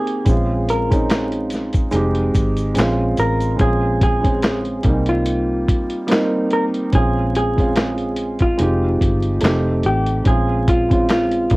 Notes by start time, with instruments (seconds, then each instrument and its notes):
Already playing: felt piano A#3 C4 D#4 G4, hollow-body jazz guitar G#4
0.07 closed hi-hat
0.25 fingered electric bass A#1, felt piano G#3 C4 C#4, kick, closed hi-hat, shaker
0.29 felt piano F4
0.68 hollow-body jazz guitar A#4, closed hi-hat, shaker
0.88 felt piano G#3 C4 C#4, kick, closed hi-hat, shaker
0.93 felt piano D#4
1.09 snare, clap, closed hi-hat, shaker
1.32 closed hi-hat
1.50 snare, closed hi-hat, shaker
1.73 kick, closed hi-hat, shaker
1.91 fingered electric bass F1, felt piano G#3 C4 D#4, closed hi-hat, shaker
1.96 felt piano G4
2.15 closed hi-hat
2.35 fingered electric bass G#1, kick, closed hi-hat, shaker
2.57 closed hi-hat, shaker
2.74 fingered electric bass A#1, felt piano G#3 C4 C#4, closed hi-hat, shaker
2.78 felt piano F4, snare, clap
3.17 fingered electric bass A1, hollow-body jazz guitar A#4, closed hi-hat, shaker
3.40 closed hi-hat, shaker
3.56 fingered electric bass A#1, felt piano G#3 C4 C#4, kick, closed hi-hat
3.61 felt piano F4, hollow-body jazz guitar G#4
4.01 hollow-body jazz guitar G#4, kick, closed hi-hat
4.21 felt piano G#3 C4 C#4, kick, closed hi-hat
4.25 felt piano G#4
4.43 snare, clap, closed hi-hat
4.65 closed hi-hat
4.83 fingered electric bass C2, felt piano G3 A#3 C4, kick, closed hi-hat
4.88 felt piano D#4
5.06 hollow-body jazz guitar F4, closed hi-hat
5.26 closed hi-hat
5.68 kick, closed hi-hat
5.90 closed hi-hat
6.07 felt piano G3 A#3 C4, closed hi-hat
6.11 felt piano D#4, snare, clap
6.51 hollow-body jazz guitar A#4, closed hi-hat
6.74 closed hi-hat
6.91 fingered electric bass A#1, felt piano G#3 C4 C#4, hollow-body jazz guitar G#4, kick, closed hi-hat
6.96 felt piano F4
7.35 hollow-body jazz guitar G#4, closed hi-hat
7.55 felt piano G#3 C4 C#4, kick, closed hi-hat
7.60 felt piano F4
7.76 snare, clap, closed hi-hat
7.98 closed hi-hat
8.16 closed hi-hat
8.39 hollow-body jazz guitar F4, kick, closed hi-hat
8.58 fingered electric bass F1, felt piano G#3 C4 D#4, closed hi-hat
8.62 felt piano G4
9.01 fingered electric bass G1, kick, closed hi-hat
9.23 closed hi-hat
9.41 fingered electric bass F1, felt piano A3 C4 D#4, closed hi-hat
9.45 felt piano G4, snare, clap
9.83 fingered electric bass A1, hollow-body jazz guitar G4, closed hi-hat
10.06 closed hi-hat
10.24 fingered electric bass A#1, felt piano G#3 C4 C#4, hollow-body jazz guitar G#4, kick, closed hi-hat
10.28 felt piano F4
10.68 hollow-body jazz guitar F4, kick, closed hi-hat
10.88 felt piano G#3 C4 C#4, kick, closed hi-hat
10.93 felt piano F4
11.09 hollow-body jazz guitar F4, snare, clap, closed hi-hat
11.31 closed hi-hat
11.50 fingered electric bass C2, felt piano G3 A#3 C4, kick, closed hi-hat